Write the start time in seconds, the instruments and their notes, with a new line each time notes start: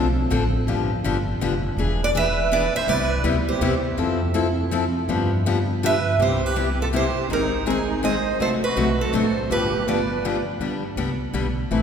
Already playing: upright bass B1
0.30 upright bass A1, steel-string acoustic guitar D3 F3 C4 D4 A4
0.67 upright bass G1, steel-string acoustic guitar D3 F3 B3 D4 G4
1.04 upright bass G1, steel-string acoustic guitar D3 F3 B3 D4 G4
1.40 upright bass F1, steel-string acoustic guitar D3 F3 B3 D4 G4
1.77 upright bass E1, steel-string acoustic guitar E3 B3 D4 G#4
2.02 accordion B4, steel-string acoustic guitar D5
2.15 steel-string acoustic guitar E3 B3 D4 G#4 E5, accordion B4
2.51 steel-string acoustic guitar E3 B3 D4 G#4 D5, accordion B4
2.75 accordion C5, steel-string acoustic guitar E5
2.87 upright bass C2, steel-string acoustic guitar C3 G3 B3 E4 G4 D5, accordion B4
3.23 upright bass D2, steel-string acoustic guitar C3 G3 B3 E4 G4
3.48 accordion G4, steel-string acoustic guitar C5
3.61 upright bass E2, steel-string acoustic guitar C3 G3 B3 E4 G4
3.97 upright bass F2, steel-string acoustic guitar F3 C4 E4 A4
4.34 steel-string acoustic guitar F3 C4 E4 A4
4.71 steel-string acoustic guitar F3 C4 E4 A4
5.08 upright bass G2, steel-string acoustic guitar D3 F3 B3 D4 G4
5.46 steel-string acoustic guitar D3 F3 B3 D4 G4
5.83 steel-string acoustic guitar D3 F3 B3 D4 G4 E5, accordion B4
6.18 upright bass C2, steel-string acoustic guitar C3 G3 B3 E4 G4 C5, accordion G4
6.43 accordion G4, steel-string acoustic guitar B4
6.56 steel-string acoustic guitar C3 G3 B3 E4 G4
6.79 accordion F4, steel-string acoustic guitar A4
6.93 steel-string acoustic guitar C3 G3 B3 E4 G4 C5, accordion G4
7.29 upright bass G#1, steel-string acoustic guitar D#3 G#3 C4 D#4 G#4, accordion D#4
7.33 steel-string acoustic guitar A#4
7.66 steel-string acoustic guitar D#3 G#3 C4 D#4 G#4, accordion D#4
7.70 steel-string acoustic guitar G#4
8.03 steel-string acoustic guitar D#3 G#3 C4 D#4 G#4 D#5, accordion C5
8.39 upright bass F#1, steel-string acoustic guitar C3 F#3 A3 D4 F#4 C5, accordion A4
8.64 accordion F#4, steel-string acoustic guitar B4
8.76 upright bass B1, steel-string acoustic guitar C3 F#3 A3 D4 F#4
9.01 accordion F#4, steel-string acoustic guitar A4
9.13 upright bass A1, steel-string acoustic guitar C3 F#3 A3 D4 F#4 C5, accordion A4
9.50 upright bass G1, steel-string acoustic guitar D3 F3 B3 D4 G4 B4, accordion G4
9.87 steel-string acoustic guitar D3 F3 B3 D4 G4 D5, accordion B4
10.25 steel-string acoustic guitar D3 F3 B3 D4 G4
10.60 upright bass G1, steel-string acoustic guitar D3 G3 B3 D4 G4
10.96 upright bass C2, steel-string acoustic guitar D3 G3 B3 D4 G4
11.33 upright bass B1, steel-string acoustic guitar D3 G3 B3 D4 G4
11.71 upright bass A1, steel-string acoustic guitar E3 A3 C4 E4 B4